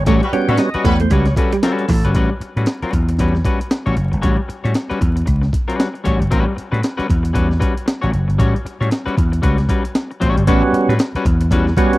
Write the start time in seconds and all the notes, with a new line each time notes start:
0.06 A1 G3 A3 C#4 F#4 C#5, kick, closed hi-hat
0.22 G3 F#4 B4, muted clean electric guitar stroke, closed hi-hat
0.32 G3 B3 C#4 F#4 G5, muted slap bass stroke, muted clean electric guitar stroke, closed hi-hat
0.48 A2 G3 C#4 F#4 B4 C#5 E5, muted clean electric guitar stroke, closed hi-hat
0.57 D#5, muted clean electric guitar stroke, snare, closed hi-hat
0.74 G3 C#4 F#4 B4, muted slap bass stroke, closed hi-hat
0.84 E2 G3 A3 F#4 B4 C#5, muted clean electric guitar stroke, kick, closed hi-hat
1.00 A3 C5, muted clean electric guitar stroke, closed hi-hat
1.10 C#2 G3 C#4 F#4 B4 C#5, kick, closed hi-hat
1.25 muted clean electric guitar stroke, snare, closed hi-hat
1.36 G3 C#4 F#4 A4 B4, muted clean electric guitar stroke, kick, closed hi-hat
1.52 G3 G4, muted clean electric guitar stroke, closed hi-hat
1.63 G3 C#4 F#4 A4 B4, snare, closed hi-hat
1.79 closed hi-hat
1.88 A1 E3, muted clean electric guitar stroke, kick, open hi-hat
2.04 G1 G3 C#4 F#4 B4, closed hi-hat
2.15 A1 G3 C#4 F#4 B4, kick, closed hi-hat
2.31 muted clean electric guitar stroke
2.40 muted slap bass stroke, muted clean electric guitar stroke, closed hi-hat
2.56 A2 G3 C#4 F#4 B4, closed hi-hat
2.66 muted clean electric guitar stroke, snare, closed hi-hat
2.82 G3 C#4 F#4 B4, muted slap bass stroke, closed hi-hat
2.93 E2, muted clean electric guitar stroke, kick, closed hi-hat
3.08 muted clean electric guitar stroke, closed hi-hat
3.19 E2 G3 C#4 F#4 B4, kick, closed hi-hat
3.35 muted clean electric guitar stroke, snare
3.45 G3 C#4 F#4 B4, kick, closed hi-hat
3.60 muted clean electric guitar stroke, closed hi-hat
3.71 muted clean electric guitar stroke, snare, closed hi-hat
3.86 A1 G3 C#4 F#4 C#5, closed hi-hat
3.96 F#1, muted clean electric guitar stroke, closed hi-hat
4.12 G1, muted clean electric guitar stroke, closed hi-hat
4.22 A1 G3 C#4 F#4 C#5, kick, closed hi-hat
4.38 muted clean electric guitar stroke
4.48 muted clean electric guitar stroke, muted slap bass stroke, closed hi-hat
4.64 A2 G3 C#4 F#4 C#5, closed hi-hat
4.74 muted clean electric guitar stroke, snare, closed hi-hat
4.89 G3 C#4 F#4 B4, muted slap bass stroke, closed hi-hat
5.00 E2, muted clean electric guitar stroke, kick, closed hi-hat
5.16 muted clean electric guitar stroke, closed hi-hat
5.26 C#2, muted clean electric guitar stroke, kick, closed hi-hat
5.42 muted clean electric guitar stroke, snare
5.53 kick, closed hi-hat
5.68 G3 C#4 F#4 B4, closed hi-hat
5.80 snare, closed hi-hat
5.94 muted clean electric guitar stroke, closed hi-hat
6.04 A1 G3 C#4 F#4 C#5, kick, closed hi-hat
6.20 G1, muted clean electric guitar stroke, closed hi-hat
6.31 A1 G3 C#4 F#4 B4, kick, closed hi-hat
6.46 muted clean electric guitar stroke
6.56 muted clean electric guitar stroke, muted slap bass stroke, closed hi-hat
6.72 A2 G3 C#4 F#4 B4, closed hi-hat
6.81 muted clean electric guitar stroke, snare, closed hi-hat
6.97 G3 C#4 F#4 B4, muted slap bass stroke, closed hi-hat
7.08 E2, muted clean electric guitar stroke, kick, closed hi-hat
7.23 muted clean electric guitar stroke, closed hi-hat
7.33 E2 G3 C#4 F#4 B4, kick, closed hi-hat
7.49 muted clean electric guitar stroke, snare
7.60 G3 C#4 F#4 B4, kick, closed hi-hat
7.75 muted clean electric guitar stroke, closed hi-hat
7.86 muted clean electric guitar stroke, snare, closed hi-hat
8.01 A1 G3 C#4 F#4 C#5, closed hi-hat
8.11 F#1, muted clean electric guitar stroke, closed hi-hat
8.28 G1, muted clean electric guitar stroke, closed hi-hat
8.38 A1 G3 C#4 F#4 C#5, kick, closed hi-hat
8.55 muted clean electric guitar stroke, closed hi-hat
8.65 muted slap bass stroke, muted clean electric guitar stroke, closed hi-hat
8.81 A2 G3 C#4 F#4 C#5, closed hi-hat
8.90 muted clean electric guitar stroke, snare, closed hi-hat
9.06 G3 C#4 F#4 B4, muted slap bass stroke, closed hi-hat
9.16 E2, muted clean electric guitar stroke, kick, closed hi-hat
9.32 muted clean electric guitar stroke, closed hi-hat
9.42 C#2 G3 C#4 F#4 B4, kick, closed hi-hat
9.58 muted clean electric guitar stroke, snare, closed hi-hat
9.69 G3 C#4 F#4 B4, kick, closed hi-hat
9.84 muted clean electric guitar stroke, closed hi-hat
9.95 snare, closed hi-hat
10.11 muted clean electric guitar stroke, closed hi-hat
10.20 A1 G3 C#4 F#4 C#5, kick, closed hi-hat
10.37 G1, muted clean electric guitar stroke, closed hi-hat
10.47 A1 G3 B3 C#4 F#4 B4, kick, closed hi-hat
10.64 muted clean electric guitar stroke
10.73 muted slap bass stroke, muted clean electric guitar stroke, closed hi-hat
10.89 A2 G3 C#4 F#4 B4, closed hi-hat
10.99 muted clean electric guitar stroke, snare, closed hi-hat
11.15 G3 C#4 F#4 B4, muted slap bass stroke, closed hi-hat
11.25 E2, muted clean electric guitar stroke, kick, closed hi-hat
11.41 muted clean electric guitar stroke, closed hi-hat
11.51 E2 G3 C#4 F#4 B4, kick, closed hi-hat
11.67 muted clean electric guitar stroke, snare
11.77 G3 B3 C#4 F#4 B4, kick, closed hi-hat
11.93 muted clean electric guitar stroke, closed hi-hat